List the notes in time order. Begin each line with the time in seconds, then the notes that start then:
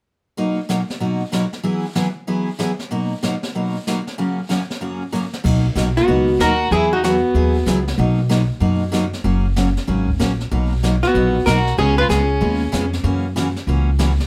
0.37 B2 F#3 A#3 D#4 F#4, brush sweep
0.69 B2 F#3 A#3 D#4 F#4, snare, hi-hat pedal
0.90 snare
1.00 B2 F#3 A#3 D#4 F#4, brush sweep
1.32 B2 F#3 A#3 D#4 F#4, snare, hi-hat pedal
1.53 snare
1.64 E3 F#3 B3 E4 G#4, brush sweep
1.95 E3 F#3 B3 E4 G#4, snare, hi-hat pedal
2.27 E3 F#3 B3 E4 G#4, brush sweep
2.59 E3 F#3 B3 E4 G#4, snare, hi-hat pedal
2.79 snare
2.91 B2 F#3 A#3 D#4 F#4, brush sweep
3.23 B2 F#3 A#3 D#4 F#4, snare, hi-hat pedal
3.43 snare
3.55 B2 F#3 A#3 D#4 F#4, brush sweep
3.87 B2 F#3 A#3 D#4 F#4, snare, hi-hat pedal
4.07 snare
4.18 F#2 C#3 F#3 A#3 C#4 F#4, brush sweep
4.49 F#2 C#3 F#3 A#3 C#4 F#4, snare, hi-hat pedal
4.70 snare
4.81 F#2 C#3 F#3 A#3 C#4 F#4, brush sweep
5.12 F#2 C#3 F#3 A#3 C#4 F#4, hi-hat pedal
5.33 snare
5.44 B1 B2 F#3 A#3 D#4 F#4, brush sweep, kick, crash
5.75 B1 B2 F#3 A#3 D#4 F#4, snare, hi-hat pedal
5.97 B3 F#4, snare
6.08 C#2 B2 F#3 A#3 D#4 F#4, brush sweep
6.39 D#2 B2 F#3 A#3 D#4 F#4 A#4, snare, hi-hat pedal
6.71 E2 E3 F#3 B3 E4 G#4, brush sweep
6.93 D#4 F#4
7.04 E3 F#3 B3 E4 F#4 G#4, snare, hi-hat pedal
7.34 D#2 E3 F#3 B3 E4 G#4, brush sweep
7.66 C#2 E3 F#3 B3 E4 G#4, snare, hi-hat pedal
7.88 snare
7.98 B1 B2 F#3 A#3 D#4 F#4, brush sweep
8.29 B2 F#3 A#3 D#4 F#4, snare, hi-hat pedal
8.60 F#2 B2 F#3 A#3 D#4 F#4, brush sweep
8.92 B2 F#3 A#3 D#4 F#4, snare, hi-hat pedal
9.13 snare
9.24 F#1 C#3 F#3 A#3 C#4 F#4, brush sweep
9.56 C#3 F#3 A#3 C#4 F#4, snare, hi-hat pedal
9.77 snare
9.87 G#1 C#3 F#3 A#3 C#4 F#4, brush sweep
10.08 kick
10.19 A#1 C#3 F#3 A#3 C#4 F#4, snare, hi-hat pedal
10.40 snare
10.51 B1 B2 F#3 A#3 D#4 F#4, brush sweep
10.83 B2 F#3 A#3 D#4 F#4, snare, hi-hat pedal
11.03 B3 F#4, snare
11.14 A#1 B2 F#3 A#3 D#4 F#4, brush sweep
11.46 B1 B2 F#3 A#3 D#4 F#4 A#4, snare, hi-hat pedal
11.67 snare
11.78 C#2 C#3 G#3 B3 C#4 F4 G#4, brush sweep
11.98 F4 B4
12.09 C#2 C#3 G#3 B3 C#4 F4 G#4, snare, hi-hat pedal
12.41 D#2 C#3 G#3 B3 F4 G#4, brush sweep
12.72 F2 C#3 G#3 B3 F4 G#4, snare, hi-hat pedal
12.93 snare
13.03 F#2 C#3 E3 A#3 C#4 F#4, brush sweep
13.36 C#3 E3 A#3 C#4 F#4, snare, hi-hat pedal
13.56 snare
13.67 C#2 C#3 E3 A#3 C#4 F#4, brush sweep
13.99 C#3 E3 A#3 C#4 F#4, snare, hi-hat pedal
14.20 snare